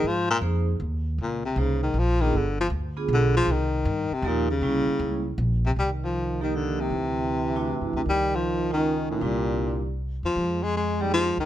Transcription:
X:1
M:3/4
L:1/8
Q:"Swing" 1/4=157
K:Cphr
V:1 name="Vibraphone"
z2 [B,EAc] z3 | z2 [B,EAc] z2 [=B,=DFA] | z3 [=B,=DFA]3 | z4 [F,B,EG] z |
[G,B,D=E]3 z3 | [K:Cm] z3 [F,B,EG]3 | z3 [=A,D=E^F]3 | z3 [A,_DEF]3 |
[G,CD=E]3 z3 | z3 [F,B,EG] z2 |]
V:2 name="Trombone" clef=bass
z6 | z6 | z6 | z6 |
z6 | [K:Cm] E,6 | =E,6 | E,6 |
G,4 z2 | A,6 |]
V:3 name="Baritone saxophone" clef=bass
F, B,, z4 | B,, C, D, E, F, E, | =D, F, z2 D, F, | E,3 C, B,, D,- |
D,4 z C, | [K:Cm] G, F,2 E, D, C,- | C,4- C, C, | G, F,2 E,2 B,,- |
B,,4 z F,- | F, A, A, G, F, E, |]
V:4 name="Upright bass" clef=bass
A,,2 F,,2 E,,2 | D,,2 C,,2 B,,,2 | G,,,2 =D,,2 =B,,,2 | C,,2 G,, z E,,2 |
C,, z D,,2 B,,,2 | [K:Cm] C,,6 | D,,4- (3D,, ^F,, D,, | _D,,6 |
C,,4- C,, =E,, | F,,4- F,, D,, |]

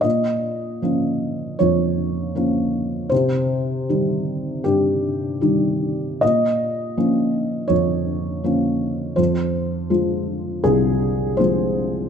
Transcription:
X:1
M:4/4
L:1/8
Q:1/4=80
K:Bbdor
V:1 name="Felt piano"
e4 d4 | c4 G4 | e4 d4 | c4 A2 c2 |]
V:2 name="Felt piano" clef=bass
B,,2 [F,B,D]2 F,,2 [F,B,D]2 | C,2 [E,G,E]2 G,,2 [E,G,E]2 | B,,2 [F,B,D]2 F,,2 [F,B,D]2 | F,,2 [F,A,F]2 C,,2 [F,A,F]2 |]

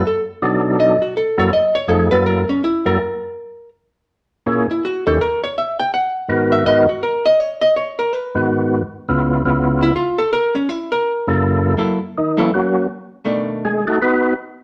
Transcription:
X:1
M:4/4
L:1/8
Q:"Swing" 1/4=164
K:F#mix
V:1 name="Hollow-body jazz guitar"
=A z3 d F A c | d c =A B ^A C E A- | A4 z4 | z E F =A ^A c e =g |
f3 e d F A d | c d c A B4- | B2 z3 E ^E =A | A C E A2 z3 |
[F,A,E=A] z2 [F,^A,E=A] z4 | [B,,D,=A,=D]3 z4 z |]
V:2 name="Tonewheel organ"
z2 [B,,F,=D^D=A]3 z2 [F,,F,^A,E=A] | z2 [^E,,^E,=A,DG] [F,,F,^A,=E=A]2 z2 [F,,F,^A,E=A] | z8 | [A,,A,CEG] z2 [D,,D,CE=G] z4 |
z2 [G,,D,B,FA]2 [G,,D,B,FA] z3 | z4 z [G,,D,B,F]3 | z [C,,C,B,E^E]2 [C,,C,B,=E^E]3 z2 | z4 z [F,,C,A,E=A]3 |
z2 [D,D] [E,A,CE] [F,A,CF]2 z2 | z2 [G,G] [=A,DF=A] [B,DFB]2 z2 |]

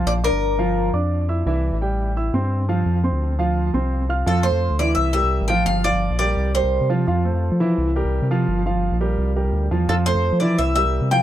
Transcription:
X:1
M:4/4
L:1/16
Q:1/4=171
K:F
V:1 name="Cuban tres"
d2 B8 z6 | z16 | z16 | A2 c4 d2 e2 e4 g2 |
f2 d4 d4 c4 z2 | z16 | z16 | A2 c4 d2 e2 e4 g2 |]
V:2 name="Grand piano"
[F,Ff]2 [Ddd']4 [F,Ff]4 [Ddd']4 [Eee']2 | [E,Ee]4 [G,Gg]4 [Eee']2 [Ccc']4 [F,Ff]2- | [F,Ff]2 [Ccc']4 [F,Ff]4 [Ccc']4 [Fff']2 | [F,Ff]2 [A,Ac]4 [E,Ee]4 [G,GB]4 [F,Ff]2- |
[F,Ff]2 [F,Ff]4 [G,GB]4 [G,GB]4 [F,Ff]2 | [F,Ff]2 [A,Ac]4 [E,Ee]4 [G,GB]4 [F,Ff]2- | [F,Ff]2 [F,Ff]4 [G,GB]4 [G,GB]4 [F,Ff]2 | [F,Ff]2 [A,Ac]4 [E,Ee]4 [G,GB]4 [F,Ff]2 |]
V:3 name="Analog synth bass" clef=bass
B,,,3 G,,,6- G,,, F,,6 | C,,3 A,,,6- A,,, G,,6 | F,,3 D,,6- D,, C,,6 | F,,3 F,,2 D,,3 C,,3 C,,2 A,,,3 |
G,,,3 G,,,2 B,,,3 C,,3 C,,2 C,3 | F,,3 F,,2 F,3 C,,3 C,,2 C,3 | G,,,3 G,,,2 B,,,3 C,,3 C,, D,,2 E,,2 | F,,3 F,,2 F,3 C,,3 C,,2 C,3 |]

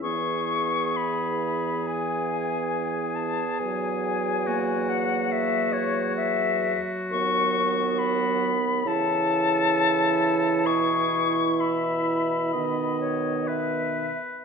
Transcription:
X:1
M:4/4
L:1/8
Q:1/4=67
K:E
V:1 name="Flute"
c'2 b2 g3 a | g3 f e c e z | c'2 b2 a4 | c'2 b3 c e z |]
V:2 name="Oboe"
G8- | G2 F6- | F3 z A4 | G2 e2 d2 B2 |]
V:3 name="Clarinet"
B,8- | B,2 ^A,4- A, z | B,4 E4- | E4 B,3 z |]
V:4 name="French horn" clef=bass
E,8 | F,8- | F,3 z E,4- | E,4 D,3 z |]
V:5 name="Bassoon" clef=bass
E,,8 | E,,6- E,, z | D,,4 C,4 | B,,6- B,, z |]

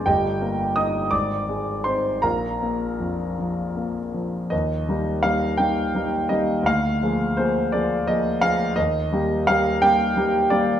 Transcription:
X:1
M:6/8
L:1/8
Q:3/8=56
K:Eb
V:1 name="Grand piano"
[Geg]2 [ee'] [dd']2 [cc'] | [Bfb]3 z3 | e2 f g2 e | f2 c d e f |
e2 f g2 d |]
V:2 name="Grand piano"
G,,, B, E A,,, A, [CE] | B,,, B, F,, F, B, F, | E,, [G,B,E] [G,B,E] [G,B,E] [G,B,E] [G,B,E] | D,, [F,B,A] [F,B,A] [F,B,A] [F,B,A] [F,B,A] |
E,, [G,B,G] [G,B,G] [G,B,G] [G,B,G] [G,B,G] |]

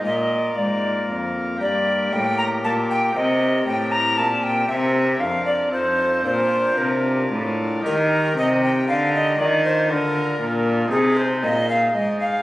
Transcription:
X:1
M:3/4
L:1/16
Q:1/4=116
K:Bbmix
V:1 name="Recorder"
e4 d4 z4 | [K:Bb] d4 g2 b2 a2 g2 | e4 g2 b2 a2 g2 | =e4 f2 d2 c4 |
c4 B4 z4 | [K:Eb] B4 e2 g2 f2 e2 | d2 c2 B6- B z | A2 c2 e2 f2 e2 f2 |]
V:2 name="Pipe organ"
[B,FB]12 | [K:Bb] [B,GB]12 | [CGB]12 | [CGB]4 [DFB]4 [EFA]4 |
[DFB]12 | [K:Eb] [EGB]12 | [DF]12 | [EA]12 |]
V:3 name="Pipe organ" clef=bass
B,,4 A,,4 F,,4 | [K:Bb] G,,4 A,,4 B,,4 | C,4 A,,4 B,,4 | C,4 F,,4 F,,4 |
B,,4 C,4 A,,4 | [K:Eb] E,4 C,4 D,4 | E,4 D,4 B,,4 | C,4 B,,4 A,,4 |]
V:4 name="Cello" clef=bass
B,,4 A,,4 F,,4 | [K:Bb] G,,4 A,,4 B,,4 | C,4 A,,4 B,,4 | C,4 F,,4 F,,4 |
B,,4 C,4 A,,4 | [K:Eb] E,4 C,4 D,4 | E,4 D,4 B,,4 | C,4 B,,4 A,,4 |]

